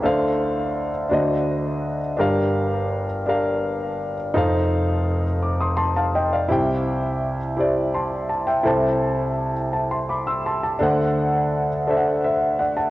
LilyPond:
<<
  \new Staff \with { instrumentName = "Grand piano" } { \time 6/8 \key f \mixolydian \tempo 4. = 56 << { r2. | r2. | r4. d'''16 <c''' ees'''>16 <a'' c'''>16 <f'' a''>16 <ees'' g''>16 <d'' f''>16~ | \key c \major <d'' f''>16 r4. r16 <a'' c'''>8 a''16 <e'' g''>16~ |
<e'' g''>16 r4 r16 a''16 <a'' c'''>16 <b'' d'''>16 <c''' e'''>16 <a'' c'''>16 a''16~ | a''16 r4. r16 <c'' e''>8 <d'' fis''>16 <fis'' a''>16 | } \\ { <d' a' c'' f''>4 r8 <d' fis' c'' ees''>4 r8 | <d' g' bes' f''>4 r8 <d' g' bes' f''>4 r8 | <ees' a' c'' f''>4 r2 | <e' g' c'' g''>4 r8 <e' g' c'' d''>4 r8 |
<e' a' c'' a''>4 r2 | <d' a' c'' fis''>4 r8 <d' a' c'' e'' fis''>4 r8 | } >> }
  \new Staff \with { instrumentName = "Grand piano" } { \clef bass \time 6/8 \key f \mixolydian <d, d>4. <d, d>4. | <g,, g,>2. | <f,, f,>2. | \key c \major <c, c>2. |
<c, c>2. | <d, d>2. | }
>>